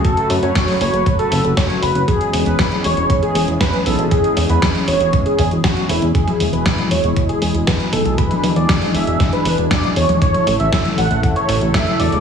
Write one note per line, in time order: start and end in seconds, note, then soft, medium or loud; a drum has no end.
0.00 2.04 C#3 medium
0.00 2.04 F#3 medium
0.00 2.04 A3 medium
0.00 2.04 F#4 medium
0.05 0.35 A4 loud
0.05 2.06 B4 medium
0.05 kick loud
0.05 closed hi-hat medium
0.17 closed hi-hat soft
0.30 0.40 F#2 medium
0.30 open hi-hat loud
0.43 0.53 F#2 medium
0.43 0.73 C#5 loud
0.43 closed hi-hat soft
0.55 kick loud
0.55 snare loud
0.55 closed hi-hat medium
0.68 open hi-hat medium
0.81 0.91 F#1 loud
0.81 1.11 C#5 loud
0.81 open hi-hat loud
0.94 1.04 F#1 medium
0.94 closed hi-hat soft
1.06 kick loud
1.06 closed hi-hat medium
1.19 1.49 A4 loud
1.19 closed hi-hat soft
1.32 1.42 F#1 loud
1.32 open hi-hat loud
1.44 1.54 F#1 medium
1.44 closed hi-hat soft
1.57 1.77 C#5 medium
1.57 kick loud
1.57 snare loud
1.57 closed hi-hat medium
1.70 closed hi-hat soft
1.82 1.93 F#1 loud
1.82 2.03 B4 medium
1.82 open hi-hat loud
1.95 2.05 F#1 medium
1.95 closed hi-hat soft
2.08 6.11 E3 medium
2.08 6.11 G#3 medium
2.08 6.11 B3 medium
2.08 6.11 C#4 medium
2.08 2.38 G#4 loud
2.08 6.11 G#4 medium
2.08 kick loud
2.08 closed hi-hat medium
2.21 closed hi-hat soft
2.33 2.43 E1 medium
2.33 open hi-hat loud
2.46 2.56 E1 medium
2.46 2.76 B4 loud
2.46 closed hi-hat soft
2.59 kick loud
2.59 snare loud
2.59 closed hi-hat medium
2.72 closed hi-hat soft
2.84 2.94 E1 loud
2.84 3.15 C#5 loud
2.84 open hi-hat loud
2.97 3.07 E1 medium
2.97 closed hi-hat soft
3.10 kick loud
3.10 closed hi-hat medium
3.22 3.53 G#4 medium
3.22 closed hi-hat soft
3.35 3.45 E1 medium
3.35 open hi-hat loud
3.48 3.58 E1 medium
3.48 closed hi-hat soft
3.60 3.81 B4 loud
3.60 kick loud
3.60 snare loud
3.60 closed hi-hat medium
3.73 closed hi-hat soft
3.86 3.96 B1 medium
3.86 4.06 A4 medium
3.86 open hi-hat loud
3.99 4.09 B1 medium
3.99 closed hi-hat soft
4.11 4.42 G#4 loud
4.11 kick loud
4.11 closed hi-hat medium
4.24 closed hi-hat soft
4.37 4.47 E2 medium
4.37 open hi-hat loud
4.49 4.60 E2 medium
4.49 4.80 B4 medium
4.49 closed hi-hat soft
4.62 kick loud
4.62 snare loud
4.62 closed hi-hat medium
4.75 open hi-hat medium
4.88 4.98 E1 loud
4.88 5.18 C#5 medium
4.88 open hi-hat loud
5.00 5.10 E1 medium
5.00 closed hi-hat soft
5.13 kick loud
5.13 closed hi-hat medium
5.26 5.56 G#4 medium
5.26 closed hi-hat soft
5.39 5.49 E2 loud
5.39 kick medium
5.39 open hi-hat loud
5.51 5.61 E1 medium
5.51 closed hi-hat soft
5.64 5.84 F#4 medium
5.64 kick loud
5.64 snare loud
5.64 closed hi-hat medium
5.77 closed hi-hat soft
5.89 5.99 E1 loud
5.89 6.10 E4 medium
5.89 open hi-hat loud
6.02 6.12 E2 medium
6.02 closed hi-hat soft
6.15 10.18 B2 medium
6.15 12.20 E3 medium
6.15 10.18 G#3 medium
6.15 8.16 E4 medium
6.15 6.45 G#4 loud
6.15 10.18 G#4 medium
6.15 kick loud
6.15 closed hi-hat medium
6.28 closed hi-hat soft
6.28 high tom medium
6.40 6.50 E1 loud
6.40 open hi-hat loud
6.53 6.63 E1 medium
6.53 6.83 B4 medium
6.53 closed hi-hat soft
6.66 kick loud
6.66 snare loud
6.66 closed hi-hat medium
6.78 closed hi-hat soft
6.78 high tom medium
6.91 7.01 E1 loud
6.91 7.21 C#5 medium
6.91 open hi-hat loud
7.04 7.14 E1 medium
7.04 closed hi-hat soft
7.16 kick loud
7.16 closed hi-hat medium
7.29 7.59 G#4 medium
7.29 closed hi-hat soft
7.42 7.52 E1 medium
7.42 open hi-hat loud
7.55 7.65 E1 medium
7.55 closed hi-hat soft
7.67 7.87 B4 medium
7.67 kick loud
7.67 snare loud
7.67 closed hi-hat medium
7.80 closed hi-hat soft
7.93 8.03 B1 medium
7.93 8.13 A4 medium
7.93 open hi-hat loud
8.05 8.15 B1 medium
8.05 closed hi-hat soft
8.18 10.20 D4 medium
8.18 8.48 B4 loud
8.18 kick loud
8.18 closed hi-hat medium
8.31 closed hi-hat soft
8.31 high tom medium
8.44 8.54 E2 medium
8.44 open hi-hat loud
8.44 high tom medium
8.56 8.66 E2 medium
8.56 8.87 D5 loud
8.56 closed hi-hat soft
8.69 kick loud
8.69 snare loud
8.69 closed hi-hat medium
8.82 open hi-hat medium
8.82 high tom medium
8.94 9.04 E1 loud
8.94 9.25 E5 loud
8.94 open hi-hat loud
9.07 9.17 E1 medium
9.07 closed hi-hat soft
9.20 kick loud
9.20 snare medium
9.20 closed hi-hat medium
9.33 9.63 B4 medium
9.33 closed hi-hat soft
9.45 9.55 E1 medium
9.45 open hi-hat loud
9.58 9.68 E1 medium
9.58 closed hi-hat soft
9.71 9.91 D5 medium
9.71 kick loud
9.71 snare loud
9.71 closed hi-hat medium
9.84 closed hi-hat soft
9.96 10.06 E1 medium
9.96 10.16 C#5 medium
9.96 open hi-hat loud
10.09 10.19 E1 medium
10.09 closed hi-hat soft
10.09 high tom medium
10.22 12.20 C#3 medium
10.22 12.20 A3 medium
10.22 12.20 E4 medium
10.22 12.20 A4 medium
10.22 10.52 C#5 loud
10.22 kick loud
10.22 closed hi-hat medium
10.34 closed hi-hat soft
10.34 high tom medium
10.47 10.57 A1 medium
10.47 open hi-hat loud
10.60 10.70 A1 medium
10.60 10.90 E5 loud
10.60 closed hi-hat soft
10.73 kick loud
10.73 snare loud
10.73 closed hi-hat medium
10.85 closed hi-hat soft
10.85 high tom medium
10.98 11.08 A1 loud
10.98 11.28 F#5 loud
10.98 open hi-hat loud
11.11 11.21 A1 medium
11.11 closed hi-hat soft
11.23 kick loud
11.23 closed hi-hat medium
11.36 11.66 C#5 medium
11.36 closed hi-hat soft
11.49 11.59 A1 loud
11.49 open hi-hat loud
11.61 11.71 A1 medium
11.61 closed hi-hat soft
11.74 11.94 E5 loud
11.74 kick loud
11.74 snare loud
11.74 closed hi-hat medium
11.87 closed hi-hat soft
12.00 12.10 E1 loud
12.00 12.20 D5 medium
12.00 open hi-hat loud
12.12 12.20 E1 medium
12.12 closed hi-hat soft